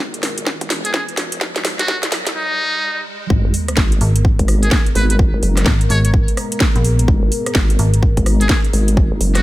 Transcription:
0.00 0.22 G#1 loud
0.00 2.32 G#3 medium
0.00 2.32 B3 medium
0.00 2.32 A#4 medium
0.00 riser medium
0.14 closed hi-hat medium
0.23 0.59 G#1 loud
0.23 snare medium
0.23 open hi-hat loud
0.38 closed hi-hat medium
0.47 kick loud
0.47 snare medium
0.61 0.93 G#1 loud
0.61 kick medium
0.61 closed hi-hat soft
0.70 snare medium
0.70 open hi-hat loud
0.85 0.91 G#4 medium
0.85 closed hi-hat medium
0.94 1.03 G#4 medium
0.94 kick loud
0.94 snare medium
1.08 closed hi-hat soft
1.17 1.54 G#1 medium
1.17 snare medium
1.17 open hi-hat loud
1.32 closed hi-hat medium
1.41 kick loud
1.41 snare medium
1.56 1.63 G#1 medium
1.56 snare medium
1.56 closed hi-hat soft
1.65 1.87 F#1 loud
1.65 snare medium
1.65 open hi-hat loud
1.79 1.98 F#4 loud
1.79 snare medium
1.79 closed hi-hat medium
1.88 2.11 G#1 medium
1.88 kick loud
1.88 snare medium
2.03 snare medium
2.03 closed hi-hat soft
2.12 snare loud
2.12 open hi-hat loud
2.27 snare medium
2.27 closed hi-hat medium
2.36 3.03 D#4 loud
3.30 3.42 G#1 loud
3.30 9.43 G#3 medium
3.30 9.43 B3 medium
3.30 9.43 A#4 medium
3.30 kick loud
3.30 sub drop medium
3.45 3.52 G#1 loud
3.54 open hi-hat loud
3.68 cross-stick medium
3.68 closed hi-hat medium
3.77 4.00 G#1 medium
3.77 kick loud
3.77 snare loud
3.92 closed hi-hat medium
4.01 4.37 G#1 loud
4.01 open hi-hat loud
4.16 closed hi-hat medium
4.25 kick loud
4.39 4.70 G#1 medium
4.39 kick medium
4.39 closed hi-hat medium
4.48 cross-stick medium
4.48 open hi-hat loud
4.63 4.69 G#4 medium
4.63 closed hi-hat medium
4.71 4.81 G#4 medium
4.71 kick loud
4.71 snare loud
4.86 closed hi-hat soft
4.95 5.31 G#1 loud
4.95 5.05 B4 medium
4.95 open hi-hat loud
5.10 5.16 B4 medium
5.10 closed hi-hat medium
5.19 kick loud
5.34 5.41 G#1 loud
5.43 5.65 F#1 loud
5.43 open hi-hat loud
5.57 cross-stick medium
5.57 snare soft
5.57 closed hi-hat medium
5.66 5.89 G#1 loud
5.66 kick loud
5.66 snare loud
5.81 closed hi-hat medium
5.90 6.26 G#1 loud
5.90 5.99 C#5 medium
5.90 open hi-hat loud
6.05 6.10 C#5 medium
6.05 closed hi-hat medium
6.14 kick loud
6.28 closed hi-hat medium
6.37 cross-stick medium
6.37 open hi-hat loud
6.52 closed hi-hat medium
6.60 kick loud
6.60 snare loud
6.76 7.07 A#1 loud
6.76 closed hi-hat soft
6.84 open hi-hat loud
6.99 closed hi-hat medium
7.08 7.20 G#1 loud
7.08 kick loud
7.23 7.30 G#1 loud
7.32 open hi-hat loud
7.46 cross-stick medium
7.46 closed hi-hat medium
7.55 7.78 G#1 loud
7.55 kick loud
7.55 snare loud
7.70 closed hi-hat medium
7.79 8.15 G#1 loud
7.79 open hi-hat loud
7.94 closed hi-hat medium
8.03 kick loud
8.17 8.48 G#1 loud
8.17 kick medium
8.17 closed hi-hat soft
8.26 cross-stick medium
8.26 open hi-hat loud
8.41 8.47 G#4 medium
8.41 closed hi-hat medium
8.49 8.59 G#4 medium
8.49 kick loud
8.49 snare loud
8.64 closed hi-hat soft
8.73 9.09 G#1 medium
8.73 open hi-hat loud
8.88 closed hi-hat medium
8.97 kick loud
9.12 9.19 G#1 loud
9.21 9.43 F#1 loud
9.21 open hi-hat loud
9.35 9.43 F#4 medium
9.35 cross-stick medium
9.35 snare soft
9.35 closed hi-hat medium

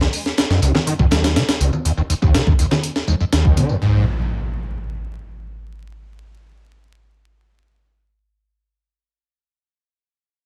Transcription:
0.01 0.07 D#2 medium
0.01 snare soft
0.01 tambourine soft
0.13 open hi-hat medium
0.13 tambourine medium
0.25 snare soft
0.25 tambourine soft
0.37 snare loud
0.37 closed hi-hat medium
0.37 tambourine soft
0.50 0.60 F#2 loud
0.50 snare soft
0.50 tambourine soft
0.62 0.72 C#2 medium
0.62 closed hi-hat medium
0.62 tambourine medium
0.74 0.79 D#3 medium
0.74 snare soft
0.74 tambourine soft
0.74 low conga medium
0.86 0.93 D#3 medium
0.86 closed hi-hat medium
0.86 tambourine soft
0.99 1.06 F2 medium
0.99 kick medium
0.99 tambourine soft
1.11 1.37 D#2 medium
1.11 snare loud
1.11 closed hi-hat medium
1.11 tambourine medium
1.11 high conga medium
1.24 snare loud
1.24 closed hi-hat medium
1.24 tambourine soft
1.35 1.43 D#3 loud
1.35 snare medium
1.35 closed hi-hat medium
1.35 tambourine soft
1.49 snare loud
1.49 closed hi-hat medium
1.60 1.71 C#2 loud
1.60 closed hi-hat medium
1.60 tambourine medium
1.73 tambourine soft
1.73 low conga medium
1.85 1.92 D#2 medium
1.85 closed hi-hat medium
1.85 tambourine soft
1.97 2.02 D#2 loud
1.97 tambourine soft
2.10 2.14 D#2 medium
2.10 closed hi-hat medium
2.10 tambourine medium
2.22 2.36 D#2 medium
2.22 kick medium
2.22 tambourine soft
2.34 2.41 D#3 loud
2.34 snare loud
2.34 closed hi-hat medium
2.34 tambourine soft
2.47 2.53 D#2 medium
2.47 kick medium
2.47 tambourine soft
2.59 2.66 D#2 medium
2.59 closed hi-hat medium
2.59 tambourine medium
2.71 snare soft
2.71 tambourine soft
2.71 low conga medium
2.83 closed hi-hat medium
2.83 tambourine soft
2.96 snare soft
2.96 tambourine soft
3.07 3.15 D#2 medium
3.07 tambourine medium
3.07 high conga medium
3.20 3.25 F2 medium
3.20 tambourine soft
3.32 3.59 D#2 loud
3.32 snare medium
3.32 closed hi-hat medium
3.32 tambourine soft
3.45 kick medium
3.45 tambourine soft
3.45 high conga medium
3.57 3.71 D#3 medium
3.57 closed hi-hat medium
3.57 tambourine medium
3.57 low conga medium
3.69 3.76 D#2 medium
3.69 tambourine soft
3.82 4.05 G#2 medium
3.82 impact medium

